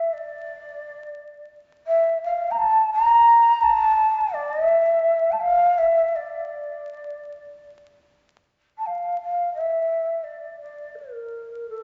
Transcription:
Already playing: E5
0.13 D5
1.87 E5
2.23 F5
2.50 A#5
2.57 A5
2.92 A#5
3.62 A5
4.33 D5
4.51 D#5
4.62 E5
5.31 A5
5.41 F5
5.77 E5
6.15 D5
8.78 A5
8.86 F5
9.22 F5
9.53 E5
10.23 D5
10.61 D5
10.98 A#4
11.69 A4

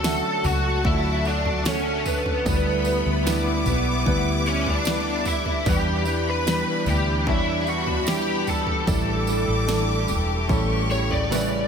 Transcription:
Already playing: D2 D3 F#3 A3 D4 F#4 A4 C#5 A5
0.03 D3 A3 C#4 D4 F#4 E5, snare, tambourine
0.43 C#2 A3 C#4 F#4 F#5, floor tom, tambourine
0.84 D2 D3 A3 C#4 D4 E4 F4 F#4 E5, kick, floor tom
0.92 F#4
1.24 A3 D4 F#4 D5, tambourine
1.45 floor tom
1.64 D3 A3 C#4 F#4 C#5, snare, tambourine
2.06 B3 B4, floor tom, tambourine
2.26 floor tom
2.46 D2 D3 G3 B3 D4 E4 B4 B5, kick, floor tom, tambourine
2.85 G3 B3 D4 E4 B4, tambourine
2.89 G3
3.06 D2
3.25 D3 G3 B3 D4 E4 B4 D6, snare, tambourine
3.66 B1 G3 B3 E4, floor tom, tambourine
4.06 D2 D3 G3 B3 D4 E4 B4, kick, floor tom
4.46 G3 B3 C#4 E4 C#5, tambourine
4.66 D4 D5, floor tom
4.85 D3 G3 B3 D4 E4 B4, snare, tambourine
5.25 E4 E5, floor tom, tambourine
5.46 floor tom
5.65 E2 B2 E3 G3 B3 D4 E4 G4 B4 B5, kick, floor tom, tambourine
5.69 G5
6.05 E3 G3 D4 E4 B4, tambourine
6.29 B4 B5
6.46 E2 B2 E3 G3 D4 E4 B4, snare, tambourine
6.86 D2 E3 G3 D4 E4 G4 G5, floor tom, tambourine
7.26 E2 E3 G3 D4 E4 C#5 E5 B5, kick, floor tom
7.66 E3 G3 D4 E4 F#4 F#5, tambourine
7.87 floor tom
8.06 E2 B2 E3 G3 D4 E4 G4 G5, snare, tambourine
8.47 A4 A5, floor tom, tambourine
8.67 floor tom
8.86 A1 A2 E3 G3 A3 D4 E4 G4 A4 D6, kick, floor tom, tambourine
9.27 G3 D4 E4 A4, tambourine
9.48 A1
9.67 A2 E3 G3 D4 E4 A4, snare, tambourine
10.08 E1 G3 D4 E4, floor tom, tambourine
10.48 A1 A2 C#3 E3 G3 C#4 E4 A4 C#6, kick, floor tom, tambourine
10.90 G3 C#4 E4 C#5, tambourine
11.11 D5, floor tom
11.30 A2 C#3 E3 G3 E4 B4, snare, tambourine

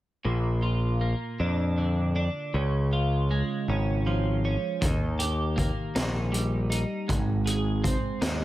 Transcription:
0.25 A#1 A#2
0.62 F4
1.01 A#3
1.40 F2 D4
1.78 D3
2.16 D4
2.54 C#2 C#3
2.93 F4
3.31 G#3
3.68 G#1 C#4
4.07 F3
4.45 C#4
4.81 D#2 D#3, kick, closed hi-hat
5.19 G4, closed hi-hat
5.56 A#3, kick, closed hi-hat
5.95 A#1 D#4, snare, closed hi-hat
6.32 G3, closed hi-hat
6.70 D#4, closed hi-hat
7.08 G#1 G#2, kick, closed hi-hat
7.46 G#4, closed hi-hat
7.84 C4, kick, closed hi-hat
8.21 D#2 D#4, snare, closed hi-hat

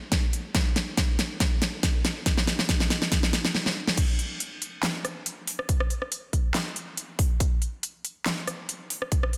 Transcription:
0.12 kick, snare, closed hi-hat
0.33 closed hi-hat
0.55 kick, snare, closed hi-hat
0.76 snare, closed hi-hat
0.97 kick, snare, closed hi-hat
1.19 snare, closed hi-hat
1.40 kick, snare, closed hi-hat
1.62 snare, closed hi-hat
1.83 kick, snare, closed hi-hat
2.05 snare, closed hi-hat
2.26 kick, snare, closed hi-hat
2.38 snare
2.47 snare, closed hi-hat
2.59 snare
2.69 kick, snare, closed hi-hat
2.80 snare
2.90 snare, closed hi-hat
3.02 snare
3.12 kick, snare, closed hi-hat
3.23 snare
3.33 snare, closed hi-hat
3.45 snare
3.55 snare
3.66 snare
3.88 snare
3.97 kick, closed hi-hat, crash
4.19 closed hi-hat
4.40 closed hi-hat
4.62 closed hi-hat
4.83 snare, clap, closed hi-hat
5.05 cross-stick, closed hi-hat
5.26 closed hi-hat
5.47 open hi-hat
5.59 cross-stick
5.69 kick, closed hi-hat
5.80 cross-stick
5.90 closed hi-hat
6.02 cross-stick
6.12 closed hi-hat
6.33 kick, closed hi-hat
6.55 snare, clap, closed hi-hat
6.76 closed hi-hat
6.97 closed hi-hat
7.19 kick, open hi-hat
7.40 kick, closed hi-hat
7.62 closed hi-hat
7.83 closed hi-hat
8.05 closed hi-hat
8.26 snare, clap, closed hi-hat
8.47 cross-stick, closed hi-hat
8.69 closed hi-hat
8.90 open hi-hat
9.02 cross-stick
9.12 kick, closed hi-hat
9.23 cross-stick
9.33 closed hi-hat

